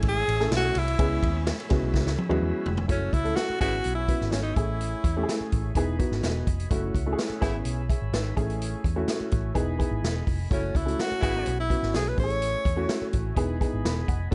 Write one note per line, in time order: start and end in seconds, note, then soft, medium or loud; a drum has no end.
0.00 0.22 A1 medium
0.00 0.18 G#3 medium
0.00 0.18 A3 medium
0.00 0.18 C#4 medium
0.00 0.18 E4 medium
0.00 0.21 G#4 medium
0.00 2.86 C#5 medium
0.00 0.97 E5 medium
0.00 2.86 G#5 medium
0.00 2.86 E6 medium
0.00 kick medium
0.00 ride medium
0.08 0.51 G#4 loud
0.28 0.46 A1 loud
0.28 ride medium
0.40 0.77 A3 medium
0.40 0.78 C#4 medium
0.40 0.78 E4 medium
0.40 0.77 G#4 medium
0.40 0.78 A4 medium
0.40 snare soft
0.51 0.70 B1 medium
0.51 snare loud
0.51 ride medium
0.56 0.80 F#4 loud
0.75 0.94 C2 medium
0.75 1.48 E4 medium
0.75 open hi-hat medium
0.75 ride medium
0.88 ride soft
0.98 1.18 C#2 loud
0.98 1.44 G#3 medium
0.98 1.44 B3 medium
0.98 1.44 C#4 medium
0.98 1.44 E4 medium
0.98 1.44 G#4 medium
0.98 2.87 B5 medium
0.98 kick loud
0.98 hi-hat pedal medium
0.98 ride medium
1.23 1.50 D#2 medium
1.23 kick medium
1.23 ride medium
1.47 snare loud
1.47 ride medium
1.60 ride soft
1.69 1.80 C#2 medium
1.69 2.07 G#3 medium
1.69 2.08 B3 medium
1.69 2.08 C#4 medium
1.69 2.08 E4 medium
1.69 2.08 F#4 loud
1.69 kick loud
1.69 snare soft
1.69 ride medium
1.83 1.92 B1 loud
1.94 2.04 C#2 loud
1.94 kick medium
1.94 snare medium
2.06 2.15 C#2 medium
2.06 snare medium
2.18 high tom medium
2.29 2.39 D#2 loud
2.29 2.67 G#3 medium
2.29 2.67 B3 medium
2.29 2.67 C#4 medium
2.29 2.67 E4 medium
2.29 2.67 F#4 loud
2.29 high tom medium
2.42 2.51 E2 medium
2.66 2.84 F1 loud
2.66 floor tom medium
2.77 floor tom loud
2.88 3.08 F#1 medium
2.88 2.99 C#3 medium
2.88 3.11 A3 medium
2.88 2.99 A3 medium
2.88 3.11 C#4 medium
2.88 3.15 C#4 medium
2.88 2.99 E4 medium
2.88 3.12 E4 medium
2.88 3.12 F#4 medium
2.88 5.73 C#5 medium
2.88 3.61 F#5 medium
2.88 3.60 A5 medium
2.88 4.55 E6 medium
2.88 kick loud
2.88 closed hi-hat medium
3.13 3.32 C#2 medium
3.13 3.37 E4 loud
3.13 kick medium
3.13 closed hi-hat medium
3.24 3.61 A3 medium
3.24 3.59 C#4 medium
3.24 3.59 E4 medium
3.24 3.61 A4 medium
3.24 closed hi-hat medium
3.36 3.60 F#4 loud
3.36 snare loud
3.36 closed hi-hat medium
3.50 muted picked electric bass stroke soft
3.60 3.80 G#1 medium
3.60 3.77 C#3 medium
3.60 3.99 B3 medium
3.60 3.76 B3 loud
3.60 3.99 C#4 medium
3.60 3.99 E4 medium
3.60 3.77 E4 loud
3.60 3.94 F#4 loud
3.60 3.99 G#4 medium
3.60 4.55 G#5 medium
3.60 4.55 B5 medium
3.60 kick medium
3.60 snare soft
3.60 closed hi-hat medium
3.84 4.13 B1 medium
3.84 closed hi-hat medium
3.95 4.33 E4 medium
4.08 4.53 B3 medium
4.08 4.53 C#4 medium
4.08 4.54 E4 medium
4.08 4.54 F#4 medium
4.08 kick medium
4.08 closed hi-hat medium
4.21 4.30 G#1 medium
4.21 snare soft
4.32 4.51 G#1 medium
4.32 4.42 C#4 medium
4.32 snare loud
4.32 closed hi-hat medium
4.42 4.57 D#4 medium
4.55 4.93 A1 medium
4.55 5.04 A3 medium
4.55 5.04 C#4 medium
4.55 5.51 E4 medium
4.55 5.04 E4 medium
4.55 5.04 G#4 medium
4.55 5.74 E5 medium
4.55 6.69 G#5 medium
4.55 kick medium
4.55 closed hi-hat medium
4.81 closed hi-hat medium
5.04 5.23 E2 medium
5.04 kick medium
5.04 closed hi-hat medium
5.17 5.69 A3 medium
5.17 5.69 C#4 medium
5.17 5.69 E4 medium
5.17 5.23 G4 medium
5.23 5.72 G#4 medium
5.29 snare medium
5.29 closed hi-hat medium
5.41 muted picked electric bass stroke soft
5.52 5.71 A1 medium
5.52 kick medium
5.52 closed hi-hat medium
5.75 6.03 E1 loud
5.75 5.95 B3 medium
5.75 5.95 D#4 medium
5.75 5.95 E4 medium
5.75 5.95 G#4 loud
5.75 6.70 D#5 medium
5.75 6.70 B5 medium
5.75 kick medium
5.75 closed hi-hat medium
5.99 6.44 B3 medium
5.99 6.44 D#4 medium
5.99 6.44 E4 medium
5.99 6.44 F#4 medium
5.99 kick medium
5.99 closed hi-hat medium
6.12 6.21 G#1 medium
6.12 snare soft
6.23 6.42 E1 medium
6.23 snare medium
6.23 closed hi-hat medium
6.47 6.65 F1 medium
6.47 kick medium
6.47 closed hi-hat medium
6.60 closed hi-hat medium
6.70 6.89 F#1 loud
6.70 6.81 C#3 medium
6.70 6.93 A3 medium
6.70 6.81 A3 medium
6.70 6.93 C#4 medium
6.70 6.93 E4 medium
6.70 6.81 E4 medium
6.70 6.94 F#4 medium
6.70 8.35 C#5 medium
6.70 7.41 E5 medium
6.70 7.41 F#5 medium
6.70 kick loud
6.70 closed hi-hat medium
6.94 7.13 C#2 medium
6.94 kick medium
6.94 closed hi-hat medium
7.06 7.42 A3 medium
7.06 7.40 C#4 medium
7.06 7.40 E4 medium
7.06 7.12 F#4 medium
7.13 7.40 G#4 medium
7.19 snare loud
7.19 closed hi-hat medium
7.30 muted picked electric bass stroke soft
7.41 7.61 G#1 medium
7.41 7.57 C#3 loud
7.41 7.80 B3 medium
7.41 7.57 B3 loud
7.41 7.80 C#4 medium
7.41 7.80 E4 medium
7.41 7.57 E4 loud
7.41 7.80 G#4 loud
7.41 9.53 G#5 medium
7.41 8.36 B5 medium
7.41 8.36 E6 medium
7.41 kick loud
7.41 snare soft
7.41 closed hi-hat medium
7.65 7.93 B1 medium
7.65 closed hi-hat medium
7.89 8.13 G#4 medium
7.89 8.12 E5 medium
7.89 kick medium
7.89 closed hi-hat medium
8.02 8.11 G#1 medium
8.13 8.31 G#1 medium
8.13 8.59 D#4 medium
8.13 8.58 B4 medium
8.13 snare loud
8.13 closed hi-hat medium
8.36 8.74 A1 medium
8.36 8.84 A3 medium
8.36 8.84 C#4 medium
8.36 8.85 E4 medium
8.36 8.85 G#4 loud
8.36 9.55 C#5 medium
8.36 9.55 E5 medium
8.36 kick medium
8.36 closed hi-hat medium
8.50 closed hi-hat soft
8.62 closed hi-hat medium
8.84 9.03 E2 medium
8.84 kick medium
8.84 closed hi-hat medium
8.96 9.48 A3 medium
8.96 9.48 C#4 medium
8.96 9.48 E4 medium
8.96 9.49 F#4 medium
9.08 snare medium
9.08 closed hi-hat medium
9.20 muted picked electric bass stroke soft
9.31 9.51 A1 medium
9.31 kick medium
9.31 closed hi-hat medium
9.55 9.83 E1 medium
9.55 9.74 B3 loud
9.55 9.74 D#4 medium
9.55 9.74 E4 medium
9.55 9.75 G#4 loud
9.55 10.50 D#5 medium
9.55 10.50 G#5 medium
9.55 10.50 B5 medium
9.55 kick medium
9.55 closed hi-hat medium
9.78 10.24 B3 medium
9.78 10.24 D#4 medium
9.78 10.24 E4 medium
9.78 10.24 G#4 medium
9.78 kick medium
9.78 closed hi-hat medium
9.91 10.01 G#1 medium
10.03 10.21 E1 medium
10.03 snare loud
10.03 closed hi-hat medium
10.27 10.46 F1 medium
10.27 kick medium
10.27 open hi-hat soft
10.50 10.69 F#1 loud
10.50 10.62 C#3 medium
10.50 10.73 A3 medium
10.50 10.61 A3 medium
10.50 10.73 C#4 medium
10.50 10.78 C#4 medium
10.50 10.73 E4 medium
10.50 10.62 E4 medium
10.50 10.73 F#4 medium
10.50 11.22 C#5 medium
10.50 11.21 F#5 medium
10.50 11.22 A5 medium
10.50 kick loud
10.50 closed hi-hat medium
10.75 10.93 C#2 medium
10.75 11.02 E4 medium
10.75 kick medium
10.75 closed hi-hat medium
10.86 11.22 A3 medium
10.86 11.20 C#4 medium
10.86 11.21 E4 medium
10.86 11.22 F#4 medium
10.86 closed hi-hat soft
10.99 11.22 F#4 medium
10.99 snare medium
10.99 closed hi-hat medium
11.12 muted picked electric bass stroke soft
11.21 11.41 G#1 medium
11.21 11.52 C#3 loud
11.21 11.52 B3 loud
11.21 11.60 B3 medium
11.21 11.60 C#4 medium
11.21 11.52 E4 loud
11.21 11.60 E4 medium
11.21 11.56 F#4 loud
11.21 11.60 G#4 medium
11.21 13.35 C#5 medium
11.21 14.29 G#5 medium
11.21 12.17 B5 medium
11.21 kick loud
11.21 snare soft
11.21 closed hi-hat medium
11.46 11.74 B1 loud
11.46 closed hi-hat medium
11.60 11.92 E4 medium
11.69 12.14 B3 medium
11.69 12.14 C#4 medium
11.69 12.14 E4 medium
11.69 12.15 F#4 medium
11.69 kick medium
11.69 closed hi-hat medium
11.83 11.91 G#1 medium
11.83 snare soft
11.94 12.12 B1 medium
11.94 12.10 G#4 medium
11.94 snare loud
11.94 closed hi-hat medium
12.08 12.19 B4 medium
12.17 12.54 A1 medium
12.17 12.65 A3 medium
12.17 12.65 C#4 medium
12.17 12.65 E4 medium
12.17 12.23 G4 medium
12.17 13.10 C#5 loud
12.17 13.35 E5 medium
12.17 kick loud
12.17 open hi-hat soft
12.24 12.68 G#4 medium
12.30 closed hi-hat soft
12.42 closed hi-hat medium
12.65 12.84 E2 medium
12.65 kick medium
12.65 closed hi-hat medium
12.76 13.29 A3 medium
12.76 13.29 C#4 medium
12.76 13.29 E4 medium
12.76 13.29 F#4 loud
12.89 snare loud
12.89 closed hi-hat medium
13.02 muted picked electric bass stroke soft
13.13 13.32 A1 medium
13.13 kick medium
13.13 closed hi-hat medium
13.35 13.64 E1 medium
13.35 13.56 B3 medium
13.35 13.56 D#4 medium
13.35 13.56 E4 medium
13.35 13.56 G#4 loud
13.35 14.30 D#5 medium
13.35 14.30 B5 medium
13.35 kick medium
13.35 closed hi-hat medium
13.60 14.05 B3 medium
13.60 14.05 D#4 medium
13.60 14.05 E4 medium
13.60 14.05 G#4 medium
13.60 kick medium
13.60 closed hi-hat medium
13.73 13.82 G#1 medium
13.85 14.03 E1 medium
13.85 14.07 B5 medium
13.85 snare loud
13.85 closed hi-hat medium
14.08 14.27 F1 medium
14.08 14.30 F#5 medium
14.08 kick medium
14.08 closed hi-hat medium
14.31 14.35 A3 medium
14.31 14.35 C#4 medium
14.31 14.35 C#5 medium
14.31 14.35 F#5 medium
14.31 14.35 A5 medium
14.31 14.35 E6 medium